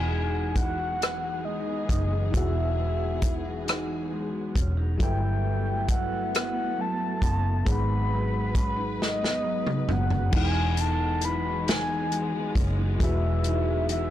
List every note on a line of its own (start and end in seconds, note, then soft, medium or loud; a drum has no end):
0.00 1.85 E1 medium
0.00 2.29 E3 medium
0.00 2.33 E3 medium
0.00 4.96 E3 medium
0.00 10.29 F#3 medium
0.00 0.11 B3 medium
0.00 4.96 B3 medium
0.00 2.30 D#4 medium
0.00 0.55 F#4 medium
0.00 2.31 G#4 soft
0.00 4.96 G#4 medium
0.00 2.32 F#5 medium
0.00 0.58 G#5 loud
0.12 1.43 G#3 medium
0.56 0.78 E4 medium
0.56 1.46 F#5 loud
0.56 kick medium
0.56 closed hi-hat medium
0.78 2.33 F#4 medium
1.00 1.88 D#4 medium
1.00 cross-stick loud
1.00 closed hi-hat medium
1.45 2.77 G#3 medium
1.45 2.37 D#5 medium
1.89 2.30 F#1 medium
1.89 3.65 D#4 medium
1.89 kick medium
1.89 closed hi-hat medium
2.31 4.52 E1 loud
2.31 4.95 E3 medium
2.31 5.44 E3 medium
2.31 4.96 F#4 medium
2.31 3.22 F#4 medium
2.31 kick medium
2.31 closed hi-hat medium
2.35 4.97 G#4 soft
2.35 3.68 E5 medium
2.35 4.98 F#5 medium
2.78 4.10 G#3 medium
3.22 3.45 E4 medium
3.22 kick medium
3.22 closed hi-hat medium
3.45 5.09 F#4 medium
3.66 4.55 D#4 medium
3.66 cross-stick loud
3.66 closed hi-hat medium
4.12 5.09 G#3 medium
4.55 4.96 E1 medium
4.55 4.77 C#4 medium
4.55 kick medium
4.55 closed hi-hat medium
4.77 4.99 D#4 soft
4.98 7.19 G1 loud
4.98 7.66 G2 medium
4.98 7.62 F#3 medium
4.98 7.65 A3 medium
4.98 7.65 B3 medium
4.98 7.62 E4 medium
4.98 5.87 E4 medium
4.98 7.63 A4 medium
4.98 kick medium
4.98 closed hi-hat medium
5.02 7.64 B4 medium
5.02 7.65 E5 medium
5.02 5.92 G5 medium
5.44 6.77 F#3 medium
5.88 7.67 E4 medium
5.88 6.34 F#5 medium
5.88 kick medium
5.88 closed hi-hat medium
6.32 7.21 B3 medium
6.32 cross-stick loud
6.32 closed hi-hat medium
6.36 6.82 F#5 medium
6.77 8.11 F#3 medium
6.77 7.71 A5 loud
7.21 7.63 F#1 medium
7.21 8.57 B3 medium
7.21 kick medium
7.21 closed hi-hat medium
7.65 9.85 G#1 loud
7.65 10.34 G#2 medium
7.65 10.29 G#3 medium
7.65 10.31 G#3 medium
7.65 8.54 D#4 medium
7.65 10.30 G#4 medium
7.65 10.31 B4 medium
7.65 kick medium
7.65 closed hi-hat medium
7.69 10.31 B4 medium
7.69 10.32 F#5 medium
7.69 9.01 B5 loud
8.12 9.43 F#3 medium
8.54 8.77 C#4 medium
8.54 kick medium
8.54 closed hi-hat medium
8.77 10.42 D#4 medium
8.99 9.21 A3 medium
8.99 9.94 D#5 medium
8.99 snare medium
9.21 9.88 B3 soft
9.21 snare medium
9.43 10.31 F#3 medium
9.67 mid tom medium
9.89 10.29 F#1 medium
9.89 12.11 B3 medium
9.89 10.35 F#5 medium
9.89 mid tom medium
10.10 floor tom medium
10.31 12.52 E1 loud
10.31 12.95 E3 medium
10.31 13.01 E3 medium
10.31 14.10 E3 medium
10.31 14.10 F#3 medium
10.31 14.10 G#3 medium
10.31 14.10 B3 medium
10.31 12.96 D#4 medium
10.31 kick loud
10.31 crash loud
10.35 12.97 G#3 medium
10.35 12.98 F#5 medium
10.35 10.82 G#5 loud
10.77 11.64 D#4 medium
10.77 11.26 A5 loud
10.77 closed hi-hat medium
11.21 11.45 E4 medium
11.21 11.68 B5 loud
11.21 closed hi-hat medium
11.45 13.89 F#4 medium
11.65 12.55 D#4 medium
11.65 closed hi-hat medium
11.69 12.54 G#5 medium
11.69 snare loud
12.12 14.10 G#3 medium
12.12 closed hi-hat soft
12.55 12.96 F#1 medium
12.55 12.78 C#4 medium
12.55 kick medium
12.55 closed hi-hat soft
12.78 13.44 D#4 medium
12.99 14.10 E1 loud
12.99 14.10 E3 medium
12.99 14.10 E3 loud
12.99 14.10 F#4 medium
12.99 kick loud
12.99 closed hi-hat medium
13.03 14.10 G#4 medium
13.03 14.10 B4 medium
13.03 13.87 E5 medium
13.44 14.10 D#4 medium
13.44 closed hi-hat medium
13.89 14.10 F#4 medium
13.89 14.10 E5 medium
13.89 closed hi-hat medium